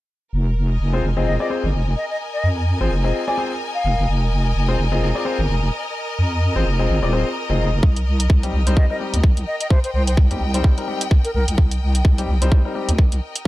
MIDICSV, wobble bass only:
0, 0, Header, 1, 2, 480
1, 0, Start_track
1, 0, Key_signature, -4, "minor"
1, 0, Tempo, 468750
1, 337, Time_signature, 4, 2, 24, 8
1, 13798, End_track
2, 0, Start_track
2, 0, Title_t, "Wobble bass"
2, 0, Program_c, 0, 39
2, 337, Note_on_c, 0, 29, 89
2, 801, Note_off_c, 0, 29, 0
2, 817, Note_on_c, 0, 29, 88
2, 1041, Note_off_c, 0, 29, 0
2, 1057, Note_on_c, 0, 29, 93
2, 1413, Note_off_c, 0, 29, 0
2, 1676, Note_on_c, 0, 31, 98
2, 1761, Note_off_c, 0, 31, 0
2, 1777, Note_on_c, 0, 29, 90
2, 2001, Note_off_c, 0, 29, 0
2, 2497, Note_on_c, 0, 41, 94
2, 2853, Note_off_c, 0, 41, 0
2, 2876, Note_on_c, 0, 32, 92
2, 2961, Note_off_c, 0, 32, 0
2, 2977, Note_on_c, 0, 29, 92
2, 3201, Note_off_c, 0, 29, 0
2, 3937, Note_on_c, 0, 29, 92
2, 4053, Note_off_c, 0, 29, 0
2, 4076, Note_on_c, 0, 29, 98
2, 4161, Note_off_c, 0, 29, 0
2, 4177, Note_on_c, 0, 29, 91
2, 4641, Note_off_c, 0, 29, 0
2, 4657, Note_on_c, 0, 29, 90
2, 4881, Note_off_c, 0, 29, 0
2, 4897, Note_on_c, 0, 29, 98
2, 5254, Note_off_c, 0, 29, 0
2, 5516, Note_on_c, 0, 31, 95
2, 5601, Note_off_c, 0, 31, 0
2, 5617, Note_on_c, 0, 29, 88
2, 5841, Note_off_c, 0, 29, 0
2, 6337, Note_on_c, 0, 41, 91
2, 6693, Note_off_c, 0, 41, 0
2, 6716, Note_on_c, 0, 32, 91
2, 6801, Note_off_c, 0, 32, 0
2, 6817, Note_on_c, 0, 29, 95
2, 7041, Note_off_c, 0, 29, 0
2, 7057, Note_on_c, 0, 32, 95
2, 7174, Note_off_c, 0, 32, 0
2, 7196, Note_on_c, 0, 27, 92
2, 7413, Note_off_c, 0, 27, 0
2, 7676, Note_on_c, 0, 29, 94
2, 8001, Note_off_c, 0, 29, 0
2, 8017, Note_on_c, 0, 36, 88
2, 8481, Note_off_c, 0, 36, 0
2, 8497, Note_on_c, 0, 36, 92
2, 8721, Note_off_c, 0, 36, 0
2, 8737, Note_on_c, 0, 36, 96
2, 9094, Note_off_c, 0, 36, 0
2, 9356, Note_on_c, 0, 38, 94
2, 9441, Note_off_c, 0, 38, 0
2, 9457, Note_on_c, 0, 36, 86
2, 9681, Note_off_c, 0, 36, 0
2, 10177, Note_on_c, 0, 36, 94
2, 10534, Note_off_c, 0, 36, 0
2, 10555, Note_on_c, 0, 39, 93
2, 10641, Note_off_c, 0, 39, 0
2, 10657, Note_on_c, 0, 36, 99
2, 10881, Note_off_c, 0, 36, 0
2, 11617, Note_on_c, 0, 36, 94
2, 11733, Note_off_c, 0, 36, 0
2, 11755, Note_on_c, 0, 36, 97
2, 11841, Note_off_c, 0, 36, 0
2, 11857, Note_on_c, 0, 36, 93
2, 12321, Note_off_c, 0, 36, 0
2, 12337, Note_on_c, 0, 36, 94
2, 12561, Note_off_c, 0, 36, 0
2, 12577, Note_on_c, 0, 36, 97
2, 12934, Note_off_c, 0, 36, 0
2, 13196, Note_on_c, 0, 38, 98
2, 13281, Note_off_c, 0, 38, 0
2, 13297, Note_on_c, 0, 36, 93
2, 13521, Note_off_c, 0, 36, 0
2, 13798, End_track
0, 0, End_of_file